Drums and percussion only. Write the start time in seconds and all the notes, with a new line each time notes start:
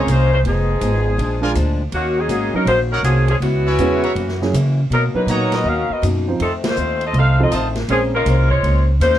0.08 hi-hat pedal, ride
0.45 ride
0.81 hi-hat pedal, ride
1.19 ride
1.55 hi-hat pedal, ride
1.92 ride
2.29 hi-hat pedal, ride
2.67 ride
3.04 hi-hat pedal, ride
3.28 ride
3.42 ride
3.79 hi-hat pedal, ride
4.04 ride
4.16 ride
4.28 snare
4.42 snare
4.54 hi-hat pedal, ride
4.92 ride
5.28 hi-hat pedal, ride
5.52 snare, ride
6.03 hi-hat pedal, ride
6.40 ride
6.64 snare, ride
6.76 hi-hat pedal
7.01 ride
7.14 ride
7.52 hi-hat pedal, ride
7.75 snare, ride
7.89 ride
8.26 hi-hat pedal, ride
8.50 kick
8.64 ride
9.01 hi-hat pedal, ride
9.13 snare